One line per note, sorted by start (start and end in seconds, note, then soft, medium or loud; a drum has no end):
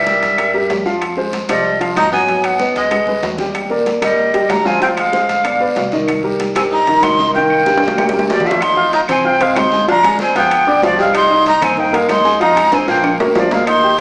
0.00 0.17 C2 medium
0.00 0.82 G3 medium
0.00 0.83 E5 medium
0.06 0.32 G3 medium
0.06 0.32 G4 medium
0.06 0.32 A#4 medium
0.06 high conga loud
0.06 low timbale medium
0.06 short guiro medium
0.22 0.67 G2 medium
0.22 high conga soft
0.22 high timbale medium
0.22 short guiro medium
0.38 0.51 G3 medium
0.38 0.51 G4 medium
0.38 0.51 A#4 medium
0.38 high conga soft
0.38 high timbale medium
0.38 long guiro medium
0.38 claves medium
0.54 0.80 G3 medium
0.54 0.80 G4 medium
0.54 0.80 A#4 medium
0.54 high conga soft
0.69 1.43 F2 medium
0.69 high conga medium
0.69 high timbale medium
0.69 low timbale medium
0.69 short guiro medium
0.85 1.11 F3 medium
0.85 1.12 F4 medium
0.85 1.12 F5 medium
0.85 high conga medium
0.85 short guiro medium
1.01 high conga soft
1.01 high timbale medium
1.01 long guiro medium
1.01 claves medium
1.17 1.43 G#3 medium
1.17 1.43 G#4 medium
1.17 1.43 C5 medium
1.17 high conga soft
1.33 high conga medium
1.33 high timbale medium
1.33 low timbale medium
1.33 short guiro medium
1.49 1.93 C2 medium
1.49 1.75 F3 medium
1.49 1.78 G3 medium
1.49 1.75 G4 medium
1.49 1.75 C5 medium
1.49 1.79 D#5 medium
1.49 high conga loud
1.49 high timbale medium
1.49 short guiro medium
1.49 claves medium
1.65 high conga soft
1.65 long guiro medium
1.80 2.06 F3 medium
1.80 2.07 F4 medium
1.80 2.07 F5 medium
1.80 high conga soft
1.80 high timbale medium
1.96 2.70 G#1 medium
1.96 2.12 D#4 medium
1.96 2.12 A#5 loud
1.96 high conga medium
1.96 high timbale medium
1.96 low timbale medium
1.96 short guiro medium
1.96 claves medium
2.12 2.25 F#3 medium
2.12 2.45 B3 medium
2.12 2.25 F#4 medium
2.12 2.25 F#5 medium
2.12 2.47 G#5 loud
2.12 high conga medium
2.12 short guiro medium
2.28 2.54 F#3 medium
2.28 2.55 F#4 medium
2.28 2.55 F#5 medium
2.28 high conga soft
2.28 high timbale medium
2.28 long guiro medium
2.44 2.76 B3 medium
2.44 2.76 F#5 medium
2.44 high conga soft
2.44 high timbale medium
2.44 claves medium
2.59 2.86 B3 medium
2.59 2.86 B4 medium
2.59 2.86 D#5 medium
2.59 high conga medium
2.59 low timbale medium
2.59 short guiro medium
2.75 3.20 C#2 medium
2.75 3.35 G#3 medium
2.75 3.36 D#5 medium
2.75 high conga soft
2.75 high timbale medium
2.75 short guiro medium
2.91 3.04 G#3 medium
2.91 3.04 G#4 medium
2.91 3.04 B4 medium
2.91 high conga medium
2.91 high timbale medium
2.91 long guiro medium
2.91 claves medium
3.07 3.33 G#3 medium
3.07 3.34 G#4 medium
3.07 3.34 B4 medium
3.07 high conga medium
3.23 3.97 D#2 medium
3.23 low conga medium
3.23 high timbale medium
3.23 low timbale medium
3.23 short guiro medium
3.38 3.65 G3 medium
3.38 3.65 G4 medium
3.38 3.65 G5 medium
3.38 low conga medium
3.38 short guiro medium
3.54 high conga soft
3.54 high timbale medium
3.54 long guiro medium
3.54 claves medium
3.70 3.96 A#3 medium
3.70 3.97 A#4 medium
3.70 3.97 D5 medium
3.70 high conga soft
3.86 high conga medium
3.86 high timbale medium
3.86 low timbale medium
3.86 short guiro medium
4.01 4.46 A#1 medium
4.01 4.52 G3 medium
4.01 4.28 A#3 medium
4.01 4.28 A#4 medium
4.01 4.28 D#5 medium
4.01 4.52 D#5 medium
4.01 high conga medium
4.01 high timbale medium
4.01 short guiro medium
4.01 claves medium
4.18 high conga soft
4.18 long guiro medium
4.34 4.60 G3 medium
4.34 4.60 G4 medium
4.34 4.60 G5 medium
4.34 high conga soft
4.34 high timbale medium
4.49 5.23 D2 loud
4.49 4.68 D4 medium
4.49 4.68 A#5 loud
4.49 high conga medium
4.49 high timbale medium
4.49 low timbale medium
4.49 short guiro medium
4.49 claves medium
4.65 4.78 F3 medium
4.65 4.82 C4 medium
4.65 4.78 F4 medium
4.65 4.79 F5 medium
4.65 4.82 G#5 loud
4.65 high conga medium
4.65 short guiro medium
4.81 5.07 F3 medium
4.81 4.90 C4 medium
4.81 5.07 F4 medium
4.81 5.08 F5 medium
4.81 4.88 G5 loud
4.81 high conga soft
4.81 high timbale medium
4.81 long guiro medium
4.97 5.42 G#3 medium
4.97 5.88 F5 medium
4.97 high conga soft
4.97 high timbale medium
4.97 claves medium
5.12 5.39 G#3 medium
5.12 5.39 G#4 medium
5.12 5.39 C5 medium
5.12 high conga medium
5.12 low timbale medium
5.12 short guiro medium
5.29 5.73 G1 medium
5.29 high conga soft
5.29 high timbale medium
5.29 short guiro medium
5.44 5.57 B3 medium
5.44 5.57 B4 medium
5.44 5.58 D5 medium
5.44 high conga soft
5.44 high timbale medium
5.44 long guiro medium
5.44 claves medium
5.60 5.86 B3 medium
5.60 5.86 B4 medium
5.60 5.87 D5 medium
5.60 high conga soft
5.76 6.50 C2 loud
5.76 high conga medium
5.76 high timbale medium
5.76 low timbale medium
5.76 short guiro medium
5.92 6.18 D#3 medium
5.92 6.19 D#4 medium
5.92 6.19 D#5 medium
5.92 high conga medium
5.92 short guiro medium
6.08 high timbale medium
6.08 long guiro medium
6.08 claves medium
6.23 6.49 G3 medium
6.23 6.50 G4 medium
6.23 6.50 A#4 medium
6.23 high conga soft
6.39 high conga medium
6.39 high timbale medium
6.39 low timbale medium
6.39 short guiro medium
6.55 7.00 G2 medium
6.55 6.81 G3 medium
6.55 6.63 C4 medium
6.55 6.82 G4 medium
6.55 6.82 A#4 medium
6.55 6.62 G#5 medium
6.55 high conga medium
6.55 high timbale medium
6.55 short guiro medium
6.55 claves medium
6.71 7.03 D#4 medium
6.71 7.05 A#5 loud
6.71 high conga soft
6.71 long guiro medium
6.87 7.13 D#3 medium
6.87 7.13 D#4 medium
6.87 7.14 D#5 medium
6.87 high conga soft
6.87 high timbale medium
7.02 7.76 C2 loud
7.02 7.33 D#4 medium
7.02 7.34 C6 loud
7.02 high conga medium
7.02 high timbale medium
7.02 low timbale medium
7.02 short guiro medium
7.02 claves medium
7.19 7.32 D#3 medium
7.19 7.32 D#4 medium
7.19 7.32 D#5 medium
7.19 high conga medium
7.19 short guiro medium
7.33 7.61 D#3 medium
7.33 8.25 A#3 medium
7.33 7.61 D#4 medium
7.33 7.61 D#5 medium
7.33 8.26 G5 medium
7.33 high conga soft
7.33 high timbale medium
7.33 long guiro medium
7.50 high conga soft
7.50 claves medium
7.66 7.92 G3 medium
7.66 7.92 G4 medium
7.66 7.92 A#4 medium
7.66 high conga medium
7.66 high timbale medium
7.66 short guiro medium
7.78 8.26 C2 medium
7.78 high timbale loud
7.82 high conga soft
7.82 short guiro medium
7.88 low timbale medium
7.97 8.10 G3 medium
7.97 8.10 G4 medium
7.97 8.11 A#4 medium
7.97 high conga medium
7.97 low timbale loud
7.97 long guiro medium
7.97 claves medium
8.09 high conga loud
8.09 low timbale medium
8.13 8.39 G3 medium
8.13 8.39 G4 medium
8.13 8.40 A#4 medium
8.19 high conga medium
8.19 low timbale medium
8.29 9.03 F2 medium
8.29 8.47 G3 medium
8.29 8.48 D5 loud
8.29 low timbale medium
8.29 short guiro medium
8.40 low conga loud
8.40 low timbale medium
8.45 8.58 F3 medium
8.45 8.63 G3 medium
8.45 8.58 F4 medium
8.45 8.64 E5 medium
8.45 8.58 F5 medium
8.45 short guiro medium
8.51 low conga medium
8.51 low timbale medium
8.61 8.93 D#4 medium
8.61 8.93 C6 loud
8.61 high conga soft
8.61 high timbale medium
8.61 long guiro medium
8.61 claves medium
8.77 9.03 F4 medium
8.77 9.03 F5 medium
8.77 9.03 F6 medium
8.77 high conga soft
8.93 9.01 D#4 medium
8.93 9.01 A#5 loud
8.93 high conga medium
8.93 high timbale medium
8.93 low timbale medium
8.93 short guiro medium
9.08 9.52 C2 medium
9.08 9.21 C4 medium
9.08 9.25 C4 medium
9.08 9.22 C5 medium
9.08 9.28 G#5 medium
9.08 9.22 C6 medium
9.08 high conga soft
9.08 low conga medium
9.08 high timbale medium
9.08 short guiro medium
9.08 claves medium
9.24 9.43 C4 medium
9.24 9.37 F4 medium
9.24 9.38 F5 medium
9.24 9.44 G5 loud
9.24 9.38 F6 medium
9.24 high conga soft
9.24 long guiro medium
9.40 9.57 G#3 medium
9.40 9.66 C4 medium
9.40 9.66 C5 medium
9.40 9.59 F5 loud
9.40 9.67 C6 medium
9.40 high conga soft
9.40 high timbale medium
9.56 10.29 D2 loud
9.56 9.88 D#4 medium
9.56 9.88 C6 loud
9.56 high conga medium
9.56 high timbale medium
9.56 low timbale medium
9.56 short guiro medium
9.56 claves medium
9.72 9.85 G#3 medium
9.72 9.85 G#4 medium
9.72 9.86 G#5 medium
9.72 high conga medium
9.72 short guiro medium
9.88 10.01 F3 medium
9.88 10.18 D4 medium
9.88 10.01 F4 medium
9.88 10.01 F5 medium
9.88 10.18 A#5 loud
9.88 high timbale medium
9.88 long guiro medium
10.03 10.30 G#3 medium
10.03 10.30 G#4 medium
10.03 10.30 G#5 medium
10.03 high conga soft
10.03 high timbale medium
10.03 claves medium
10.19 10.35 C4 medium
10.19 10.36 G#5 medium
10.19 high conga medium
10.19 low timbale medium
10.19 short guiro medium
10.35 10.64 G1 medium
10.35 10.61 F3 medium
10.35 10.80 B3 medium
10.35 10.61 F4 medium
10.35 10.61 F5 medium
10.35 10.81 G5 medium
10.35 high conga soft
10.35 high timbale medium
10.35 short guiro medium
10.51 high conga soft
10.51 high timbale medium
10.51 long guiro medium
10.51 claves medium
10.67 10.81 B1 medium
10.67 10.80 D4 medium
10.67 10.80 D5 medium
10.67 10.80 D6 medium
10.67 high conga soft
10.82 11.56 C2 loud
10.82 10.96 F3 medium
10.82 10.98 F3 medium
10.82 10.96 F4 medium
10.82 10.99 D5 loud
10.82 10.96 F5 medium
10.82 high conga medium
10.82 high timbale medium
10.82 low timbale medium
10.82 short guiro medium
10.98 11.24 G3 medium
10.98 11.14 G#3 medium
10.98 11.24 G4 medium
10.98 11.14 F5 medium
10.98 11.25 G5 medium
10.98 short guiro medium
11.14 11.44 D#4 medium
11.14 11.45 C6 loud
11.14 high conga soft
11.14 high timbale loud
11.14 long guiro medium
11.14 claves medium
11.30 11.56 D#4 medium
11.30 11.56 D#5 medium
11.30 11.56 D#6 medium
11.30 high conga soft
11.46 11.65 D#4 medium
11.46 11.66 A#5 loud
11.46 high conga medium
11.46 high timbale medium
11.46 low timbale medium
11.46 short guiro medium
11.61 12.06 G2 loud
11.61 11.74 A#3 medium
11.61 11.80 C4 medium
11.61 11.75 A#4 medium
11.61 11.81 G#5 medium
11.61 11.75 A#5 medium
11.61 high conga soft
11.61 low conga medium
11.61 high timbale loud
11.61 short guiro medium
11.61 claves medium
11.77 11.96 A#3 medium
11.77 11.90 D#4 medium
11.77 11.90 D#5 medium
11.77 11.97 G5 loud
11.77 11.90 D#6 medium
11.77 high conga soft
11.77 low conga medium
11.77 long guiro medium
11.93 12.09 G#3 medium
11.93 12.19 A#3 medium
11.93 12.19 A#4 medium
11.93 12.10 F5 medium
11.93 12.19 A#5 medium
11.93 high conga soft
11.93 high timbale medium
12.08 12.82 F2 loud
12.08 12.39 D#4 medium
12.08 12.40 C6 loud
12.08 high conga medium
12.08 high timbale medium
12.08 low timbale medium
12.08 short guiro medium
12.08 claves medium
12.25 12.38 G#3 medium
12.25 12.38 G#4 medium
12.25 12.38 G#5 medium
12.25 short guiro medium
12.40 12.53 F3 medium
12.40 12.75 D#4 medium
12.40 12.54 F4 medium
12.40 12.54 F5 medium
12.40 12.76 A#5 loud
12.40 high conga soft
12.40 high timbale medium
12.40 long guiro medium
12.56 12.82 G#3 medium
12.56 12.82 G#4 medium
12.56 12.82 G#5 medium
12.56 high conga soft
12.56 high timbale medium
12.56 claves medium
12.72 12.88 C4 medium
12.72 12.89 G#5 medium
12.72 high conga loud
12.72 high timbale medium
12.72 short guiro medium
12.88 13.17 A#1 loud
12.88 13.14 F3 medium
12.88 13.23 A#3 medium
12.88 13.14 F4 medium
12.88 13.14 F5 medium
12.88 13.16 G5 loud
12.88 high conga soft
12.88 short guiro medium
13.04 high conga soft
13.04 high timbale medium
13.04 long guiro medium
13.04 claves medium
13.19 13.34 D2 medium
13.19 13.33 A#3 medium
13.19 13.33 A#4 medium
13.19 13.33 A#5 medium
13.19 high conga soft
13.19 low timbale loud
13.35 14.00 D#2 loud
13.35 13.48 F3 medium
13.35 13.54 F3 medium
13.35 13.48 F4 medium
13.35 13.55 D5 medium
13.35 13.49 F5 medium
13.35 high conga medium
13.35 low timbale loud
13.35 short guiro medium
13.51 13.67 G#3 medium
13.51 13.78 A#3 medium
13.51 13.78 A#4 medium
13.51 13.68 F5 medium
13.51 13.78 A#5 medium
13.51 high conga medium
13.51 low timbale medium
13.51 short guiro medium
13.67 13.97 D#4 medium
13.67 13.97 C6 loud
13.67 high conga soft
13.67 high timbale medium
13.67 long guiro medium
13.67 claves medium
13.83 14.00 G4 medium
13.83 14.00 G5 medium
13.83 14.00 G6 medium
13.83 high conga soft